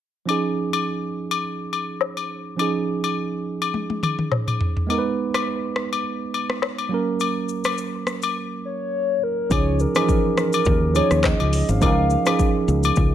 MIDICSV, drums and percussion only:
0, 0, Header, 1, 2, 480
1, 0, Start_track
1, 0, Tempo, 576923
1, 231, Time_signature, 4, 2, 24, 8
1, 10937, End_track
2, 0, Start_track
2, 0, Title_t, "Drums"
2, 239, Note_on_c, 9, 67, 74
2, 322, Note_off_c, 9, 67, 0
2, 610, Note_on_c, 9, 67, 81
2, 693, Note_off_c, 9, 67, 0
2, 1092, Note_on_c, 9, 67, 79
2, 1175, Note_off_c, 9, 67, 0
2, 1438, Note_on_c, 9, 67, 65
2, 1521, Note_off_c, 9, 67, 0
2, 1670, Note_on_c, 9, 77, 84
2, 1753, Note_off_c, 9, 77, 0
2, 1806, Note_on_c, 9, 67, 72
2, 1889, Note_off_c, 9, 67, 0
2, 2158, Note_on_c, 9, 67, 81
2, 2241, Note_off_c, 9, 67, 0
2, 2528, Note_on_c, 9, 67, 80
2, 2612, Note_off_c, 9, 67, 0
2, 3010, Note_on_c, 9, 67, 77
2, 3093, Note_off_c, 9, 67, 0
2, 3111, Note_on_c, 9, 48, 55
2, 3195, Note_off_c, 9, 48, 0
2, 3244, Note_on_c, 9, 48, 53
2, 3327, Note_off_c, 9, 48, 0
2, 3351, Note_on_c, 9, 47, 72
2, 3357, Note_on_c, 9, 67, 68
2, 3434, Note_off_c, 9, 47, 0
2, 3440, Note_off_c, 9, 67, 0
2, 3483, Note_on_c, 9, 47, 63
2, 3566, Note_off_c, 9, 47, 0
2, 3590, Note_on_c, 9, 77, 81
2, 3591, Note_on_c, 9, 45, 88
2, 3674, Note_off_c, 9, 45, 0
2, 3674, Note_off_c, 9, 77, 0
2, 3723, Note_on_c, 9, 45, 79
2, 3726, Note_on_c, 9, 67, 71
2, 3807, Note_off_c, 9, 45, 0
2, 3809, Note_off_c, 9, 67, 0
2, 3832, Note_on_c, 9, 43, 92
2, 3915, Note_off_c, 9, 43, 0
2, 3964, Note_on_c, 9, 43, 84
2, 4048, Note_off_c, 9, 43, 0
2, 4077, Note_on_c, 9, 67, 79
2, 4160, Note_off_c, 9, 67, 0
2, 4446, Note_on_c, 9, 37, 108
2, 4450, Note_on_c, 9, 67, 80
2, 4529, Note_off_c, 9, 37, 0
2, 4533, Note_off_c, 9, 67, 0
2, 4792, Note_on_c, 9, 37, 90
2, 4875, Note_off_c, 9, 37, 0
2, 4931, Note_on_c, 9, 67, 78
2, 5014, Note_off_c, 9, 67, 0
2, 5277, Note_on_c, 9, 67, 67
2, 5360, Note_off_c, 9, 67, 0
2, 5405, Note_on_c, 9, 37, 89
2, 5488, Note_off_c, 9, 37, 0
2, 5509, Note_on_c, 9, 77, 87
2, 5514, Note_on_c, 9, 37, 96
2, 5593, Note_off_c, 9, 77, 0
2, 5597, Note_off_c, 9, 37, 0
2, 5645, Note_on_c, 9, 67, 72
2, 5728, Note_off_c, 9, 67, 0
2, 5991, Note_on_c, 9, 82, 66
2, 5998, Note_on_c, 9, 67, 81
2, 6074, Note_off_c, 9, 82, 0
2, 6081, Note_off_c, 9, 67, 0
2, 6229, Note_on_c, 9, 82, 45
2, 6312, Note_off_c, 9, 82, 0
2, 6359, Note_on_c, 9, 82, 72
2, 6365, Note_on_c, 9, 37, 109
2, 6368, Note_on_c, 9, 67, 82
2, 6442, Note_off_c, 9, 82, 0
2, 6448, Note_off_c, 9, 37, 0
2, 6451, Note_off_c, 9, 67, 0
2, 6472, Note_on_c, 9, 82, 74
2, 6555, Note_off_c, 9, 82, 0
2, 6712, Note_on_c, 9, 37, 92
2, 6714, Note_on_c, 9, 82, 46
2, 6795, Note_off_c, 9, 37, 0
2, 6797, Note_off_c, 9, 82, 0
2, 6841, Note_on_c, 9, 82, 69
2, 6851, Note_on_c, 9, 67, 79
2, 6924, Note_off_c, 9, 82, 0
2, 6934, Note_off_c, 9, 67, 0
2, 7911, Note_on_c, 9, 82, 73
2, 7912, Note_on_c, 9, 36, 113
2, 7918, Note_on_c, 9, 67, 82
2, 7994, Note_off_c, 9, 82, 0
2, 7995, Note_off_c, 9, 36, 0
2, 8001, Note_off_c, 9, 67, 0
2, 8149, Note_on_c, 9, 82, 48
2, 8232, Note_off_c, 9, 82, 0
2, 8280, Note_on_c, 9, 82, 74
2, 8286, Note_on_c, 9, 37, 116
2, 8289, Note_on_c, 9, 67, 87
2, 8363, Note_off_c, 9, 82, 0
2, 8369, Note_off_c, 9, 37, 0
2, 8372, Note_off_c, 9, 67, 0
2, 8392, Note_on_c, 9, 36, 95
2, 8393, Note_on_c, 9, 82, 80
2, 8475, Note_off_c, 9, 36, 0
2, 8476, Note_off_c, 9, 82, 0
2, 8632, Note_on_c, 9, 37, 100
2, 8634, Note_on_c, 9, 82, 49
2, 8715, Note_off_c, 9, 37, 0
2, 8717, Note_off_c, 9, 82, 0
2, 8758, Note_on_c, 9, 82, 72
2, 8770, Note_on_c, 9, 67, 82
2, 8841, Note_off_c, 9, 82, 0
2, 8853, Note_off_c, 9, 67, 0
2, 8863, Note_on_c, 9, 82, 75
2, 8873, Note_on_c, 9, 36, 112
2, 8946, Note_off_c, 9, 82, 0
2, 8956, Note_off_c, 9, 36, 0
2, 9111, Note_on_c, 9, 82, 60
2, 9118, Note_on_c, 9, 67, 75
2, 9195, Note_off_c, 9, 82, 0
2, 9201, Note_off_c, 9, 67, 0
2, 9242, Note_on_c, 9, 37, 93
2, 9244, Note_on_c, 9, 82, 79
2, 9325, Note_off_c, 9, 37, 0
2, 9327, Note_off_c, 9, 82, 0
2, 9345, Note_on_c, 9, 82, 67
2, 9350, Note_on_c, 9, 77, 91
2, 9352, Note_on_c, 9, 36, 89
2, 9353, Note_on_c, 9, 37, 103
2, 9353, Note_on_c, 9, 39, 99
2, 9429, Note_off_c, 9, 82, 0
2, 9433, Note_off_c, 9, 77, 0
2, 9436, Note_off_c, 9, 36, 0
2, 9436, Note_off_c, 9, 37, 0
2, 9436, Note_off_c, 9, 39, 0
2, 9485, Note_on_c, 9, 67, 75
2, 9568, Note_off_c, 9, 67, 0
2, 9592, Note_on_c, 9, 46, 86
2, 9592, Note_on_c, 9, 82, 64
2, 9676, Note_off_c, 9, 46, 0
2, 9676, Note_off_c, 9, 82, 0
2, 9723, Note_on_c, 9, 82, 80
2, 9806, Note_off_c, 9, 82, 0
2, 9830, Note_on_c, 9, 82, 72
2, 9831, Note_on_c, 9, 36, 110
2, 9838, Note_on_c, 9, 67, 83
2, 9914, Note_off_c, 9, 82, 0
2, 9915, Note_off_c, 9, 36, 0
2, 9921, Note_off_c, 9, 67, 0
2, 10067, Note_on_c, 9, 82, 48
2, 10150, Note_off_c, 9, 82, 0
2, 10199, Note_on_c, 9, 82, 75
2, 10205, Note_on_c, 9, 37, 120
2, 10209, Note_on_c, 9, 67, 87
2, 10283, Note_off_c, 9, 82, 0
2, 10288, Note_off_c, 9, 37, 0
2, 10292, Note_off_c, 9, 67, 0
2, 10311, Note_on_c, 9, 36, 93
2, 10311, Note_on_c, 9, 82, 84
2, 10394, Note_off_c, 9, 36, 0
2, 10394, Note_off_c, 9, 82, 0
2, 10551, Note_on_c, 9, 82, 50
2, 10634, Note_off_c, 9, 82, 0
2, 10677, Note_on_c, 9, 82, 76
2, 10691, Note_on_c, 9, 67, 82
2, 10760, Note_off_c, 9, 82, 0
2, 10774, Note_off_c, 9, 67, 0
2, 10782, Note_on_c, 9, 82, 76
2, 10792, Note_on_c, 9, 36, 120
2, 10865, Note_off_c, 9, 82, 0
2, 10875, Note_off_c, 9, 36, 0
2, 10937, End_track
0, 0, End_of_file